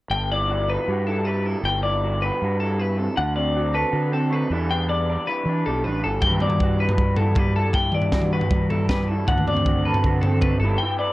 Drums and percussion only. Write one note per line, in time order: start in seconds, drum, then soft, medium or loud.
6.22 kick loud
6.22 floor tom medium
6.31 mid tom medium
6.40 mid tom medium
6.50 floor tom medium
6.60 kick medium
6.89 floor tom medium
6.98 kick loud
7.16 floor tom medium
7.35 kick loud
7.35 floor tom medium
7.73 kick loud
7.73 floor tom medium
7.92 mid tom medium
8.02 floor tom medium
8.12 kick medium
8.12 snare medium
8.22 mid tom medium
8.41 floor tom medium
8.51 kick loud
8.51 mid tom medium
8.71 floor tom medium
8.89 kick loud
8.89 snare medium
8.89 floor tom medium
9.28 kick loud
9.28 floor tom medium
9.38 mid tom medium
9.47 mid tom medium
9.57 floor tom medium
9.66 kick medium
9.94 floor tom medium
10.04 kick medium
10.23 floor tom medium
10.41 kick loud
10.41 floor tom medium